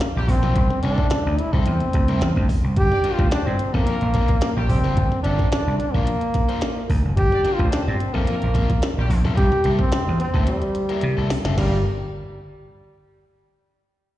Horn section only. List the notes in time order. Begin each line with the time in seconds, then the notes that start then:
0.15 G3 G4
2.91 D4 D5
3.19 C4 C5
3.86 A#3 A#4
4.55 G3 G4
7.32 D4 D5
7.60 C4 C5
8.28 A#3 A#4
8.97 G3 G4
11.57 G3 A#3 F4 A#4